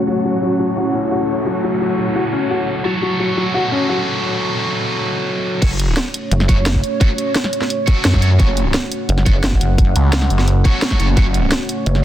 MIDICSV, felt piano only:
0, 0, Header, 1, 2, 480
1, 0, Start_track
1, 0, Key_signature, 3, "minor"
1, 0, Tempo, 346821
1, 100, Time_signature, 4, 2, 24, 8
1, 16666, End_track
2, 0, Start_track
2, 0, Title_t, "Felt piano"
2, 0, Program_c, 0, 0
2, 99, Note_on_c, 0, 54, 76
2, 189, Note_off_c, 0, 54, 0
2, 339, Note_on_c, 0, 54, 75
2, 488, Note_off_c, 0, 54, 0
2, 579, Note_on_c, 0, 54, 70
2, 728, Note_off_c, 0, 54, 0
2, 818, Note_on_c, 0, 54, 75
2, 908, Note_off_c, 0, 54, 0
2, 1059, Note_on_c, 0, 66, 83
2, 1149, Note_off_c, 0, 66, 0
2, 1300, Note_on_c, 0, 61, 72
2, 1448, Note_off_c, 0, 61, 0
2, 1540, Note_on_c, 0, 66, 74
2, 1629, Note_off_c, 0, 66, 0
2, 2019, Note_on_c, 0, 54, 76
2, 2109, Note_off_c, 0, 54, 0
2, 2260, Note_on_c, 0, 54, 76
2, 2408, Note_off_c, 0, 54, 0
2, 2500, Note_on_c, 0, 54, 71
2, 2648, Note_off_c, 0, 54, 0
2, 2738, Note_on_c, 0, 54, 75
2, 2828, Note_off_c, 0, 54, 0
2, 2978, Note_on_c, 0, 66, 81
2, 3068, Note_off_c, 0, 66, 0
2, 3219, Note_on_c, 0, 61, 71
2, 3368, Note_off_c, 0, 61, 0
2, 3458, Note_on_c, 0, 66, 75
2, 3548, Note_off_c, 0, 66, 0
2, 3938, Note_on_c, 0, 54, 78
2, 4028, Note_off_c, 0, 54, 0
2, 4179, Note_on_c, 0, 54, 74
2, 4328, Note_off_c, 0, 54, 0
2, 4419, Note_on_c, 0, 54, 73
2, 4568, Note_off_c, 0, 54, 0
2, 4659, Note_on_c, 0, 54, 74
2, 4749, Note_off_c, 0, 54, 0
2, 4899, Note_on_c, 0, 66, 83
2, 4988, Note_off_c, 0, 66, 0
2, 5139, Note_on_c, 0, 61, 72
2, 5288, Note_off_c, 0, 61, 0
2, 5380, Note_on_c, 0, 66, 73
2, 5469, Note_off_c, 0, 66, 0
2, 16666, End_track
0, 0, End_of_file